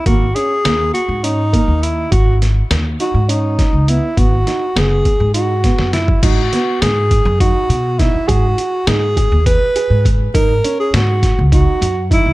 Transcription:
<<
  \new Staff \with { instrumentName = "Alto saxophone" } { \time 7/8 \key gis \minor \tempo 4 = 102 fis'8 gis'4 fis'8 dis'4 e'8 | fis'8 r4 fis'8 dis'4 e'8 | fis'4 gis'4 fis'4 e'8 | fis'4 gis'4 fis'4 e'8 |
fis'4 gis'4 b'4 r8 | ais'8. gis'16 fis'4 fis'4 e'8 | }
  \new Staff \with { instrumentName = "Grand piano" } { \time 7/8 \key gis \minor ais8 cis'8 ais4 cis'8 ais4 | fis'4 r8 dis'8 cis'4 b8 | b8 dis'8 b4 dis'8 b4 | dis'8 b4 r8 dis'4 dis'8 |
gis'8 fis'8 dis'8 gis'4 gis'4 | dis'8 cis'4 r8 dis'4 dis'8 | }
  \new Staff \with { instrumentName = "Upright bass" } { \clef bass \time 7/8 \key gis \minor gis,,8 r8 dis,8 r16 gis,4 dis,8. | gis,,4 dis,8 r16 gis,4 cis,8 r16 | gis,,8 r8 fis,,8 r16 gis,4 fis,8. | gis,8 r8 gis,8. fis,8 r16 b,8. fis,16 |
gis,8 r8 gis,8. dis,8 r8 gis,8. | gis,8 r8 gis,8. cis,8 r16 fis,8. cis,16 | }
  \new DrumStaff \with { instrumentName = "Drums" } \drummode { \time 7/8 <hh bd>8 hh8 <hh sn>8 hh8 hh8 <hh bd>8 hh8 | <hh bd>8 <hh sn>8 <hh sn>8 hh8 hh8 <hh bd sn>8 hh8 | <hh bd>8 <hh sn>8 <hh sn>8 <hh bd>8 hh8 <hh bd sn>16 sn16 <hh sn>16 bd16 | <cymc hh bd>8 <hh sn>8 <hh sn>8 <hh bd>8 <hh bd>8 hh8 <hh bd sn>8 |
<hh bd>8 hh8 <hh sn>8 <hh bd>8 <hh bd>8 hh8 <hh bd>8 | <hh bd>8 hh8 <hh sn>8 <hh bd sn>8 <hh bd>8 hh8 <hh bd>8 | }
>>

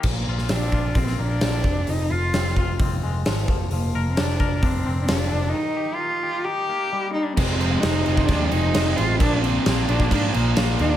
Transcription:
<<
  \new Staff \with { instrumentName = "Cello" } { \time 4/4 \key bes \mixolydian \tempo 4 = 131 bes4 d'4 c'8 d'4. | ees'8 f'4 r2 r8 | bes4 d'4 c'4 d'4 | ees'4 f'4 g'4. ees'16 d'16 |
c'4 ees'4 d'8 ees'4 f'8 | d'8 c'4 d'8 d'8 bes4 ees'16 d'16 | }
  \new Staff \with { instrumentName = "Clean electric guitar" } { \time 4/4 \key bes \mixolydian bes,8 f'8 c'8 f'8 c'8 bes8 d8 f,8 | f,8 f'8 c'8 f'8 c'8 aes8 f8 f8 | f8 bes'8 d'8 bes'8 d'8 c'8 f8 d'8 | ees8 g'8 ees'8 g'8 ees'8 bes8 g8 ees'8 |
r1 | r1 | }
  \new Staff \with { instrumentName = "Overdriven electric guitar" } { \clef bass \time 4/4 \key bes \mixolydian r1 | r1 | r1 | r1 |
<f, c f aes c'>8 <f aes c'>8 <c f aes c'>8 <f aes c'>8 <f, c f aes c'>8 <f aes c'>8 <c f aes c'>4 | <bes, f bes d'>8 <f bes d'>8 <bes, f bes d'>8 <f bes d'>8 <bes, f bes d'>8 <f bes d'>8 <bes, f bes d'>4 | }
  \new Staff \with { instrumentName = "Picked electric bass" } { \clef bass \time 4/4 \key bes \mixolydian bes,,8 bes,,8 bes,,8 bes,,8 bes,,8 bes,,8 bes,,8 f,,8 | f,,8 f,,8 f,,8 f,,8 f,,8 f,,8 aes,,8 f,,8 | f,,8 f,,8 f,,8 f,,8 f,,8 f,,8 f,,8 f,,8 | r1 |
f,,4 f,,8 f,,8 ees,8 f,,8 f,,8 a,,8 | bes,,4 bes,,8 bes,,8 aes,8 bes,,8 bes,,8 ees,8 | }
  \new DrumStaff \with { instrumentName = "Drums" } \drummode { \time 4/4 <cymc bd>8. sn16 <hho sn>8 bd8 <hho bd>16 sn8. <hho sn>8 bd8 | hho4 <hho sn>8 bd8 <hho bd>4 <hho sn>8 bd8 | hho4 <hho sn>8 bd8 <hho bd>4 <hho sn>4 | r4 r4 r4 r4 |
<cymc bd>8 cymc8 <cymc sn>8 cymc16 bd16 <cymc bd>8 cymc8 <cymc sn>8 cymc8 | <cymc bd>8 cymc8 <cymc sn>8 cymc16 bd16 <cymc bd>8 cymc8 <cymc sn>8 cymc8 | }
>>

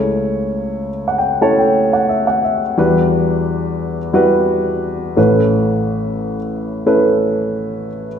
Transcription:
<<
  \new Staff \with { instrumentName = "Upright piano" } { \time 4/4 \key a \mixolydian \tempo 4 = 88 << { r4 \tuplet 3/2 { r8. fis''16 g''8 } a''16 g''8 fis''16 e''16 fis''16 e''8 | r1 | r1 | } \\ { <a cis' e' cis''>4~ <a cis' e' cis''>16 r8. <a cis' e' cis''>4.~ <a cis' e' cis''>16 r16 | <g e' fis' b'>4.~ <g e' fis' b'>16 r16 <g e' fis' b'>4. <a cis' e' b'>8~ | <a cis' e' b'>4~ <a cis' e' b'>16 r8. <a cis' e' b'>4.~ <a cis' e' b'>16 r16 | } >> }
  \new Staff \with { instrumentName = "Upright piano" } { \clef bass \time 4/4 \key a \mixolydian <cis, cis>2.~ <cis, cis>8 r8 | <e, e>2.~ <e, e>8 <a,, a,>8~ | <a,, a,>2.~ <a,, a,>8 r8 | }
>>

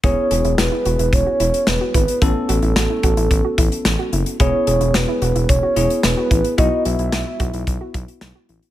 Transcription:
<<
  \new Staff \with { instrumentName = "Soft synth lead" } { \time 4/4 \key e \major \tempo 4 = 110 cis''4 b'4 cis''4 b'8 b'8 | a'4 a'2~ a'8 r8 | cis''4 b'4 cis''4 b'4 | dis''8 e''2 r4. | }
  \new Staff \with { instrumentName = "Synth arpeggio sound" } { \time 4/4 \key e \major e'8 gis'16 e'16 fis'16 e'16 fis'16 e'8 fis'16 e'8 r16 fis'16 e'8 | e'8 fis'16 e'16 fis'16 e'16 fis'16 e'8 fis'16 e'8 r16 fis'16 e'8 | e'8 gis'16 e'16 fis'16 e'16 fis'16 e'8 fis'16 e'8 r16 fis'16 e'8 | e'8 fis'16 e'16 fis'16 e'16 fis'16 e'8 fis'16 e'8 r16 fis'16 e'8 | }
  \new Staff \with { instrumentName = "Tine electric piano" } { \time 4/4 \key e \major <b e' gis'>1 | <b cis' a'>1 | <b e' gis'>2~ <b e' gis'>8 <b e' gis'>4. | <b e' fis'>1 | }
  \new Staff \with { instrumentName = "Analog synth bass" } { \clef bass \time 4/4 \key e \major e,,16 r16 e,,16 e,,16 e,,16 r16 e,,16 e,,16 e,,16 r16 e,,16 r16 e,,16 r16 gis,,16 r16 | a,,16 r16 a,,16 a,,16 a,,16 r16 a,,16 a,,16 a,,16 r16 a,,16 r16 a,,16 r16 fis,,16 r16 | e,,16 r16 e,,16 e,,16 e,,16 r16 e,,16 e,,16 e,,16 r16 e,,16 r16 e,,16 r16 a,,16 r16 | b,,16 r16 b,,16 b,,16 b,,16 r16 b,,16 b,,16 b,,16 r16 b,,16 r16 b,,16 r16 a,,16 r16 | }
  \new DrumStaff \with { instrumentName = "Drums" } \drummode { \time 4/4 <hh bd>8 hh16 hh16 <hh sn>8 hh16 hh16 <hh bd>8 hh16 hh16 <hh sn>8 <hh bd>16 hh16 | <hh bd>8 hh16 hh16 <hh sn>8 <hh bd>16 hh16 <hh bd>8 <hh bd>16 hh16 <hh sn>8 hh16 hh16 | <hh bd>8 hh16 hh16 <hh sn>8 hh16 hh16 <hh bd>8 hh16 hh16 <hh sn>8 <hh bd>16 hh16 | <hh bd>8 hh16 hh16 <hh sn>8 <hh bd>16 hh16 <hh bd>8 <hh bd>16 hh16 <hh sn>8 hh16 hh16 | }
>>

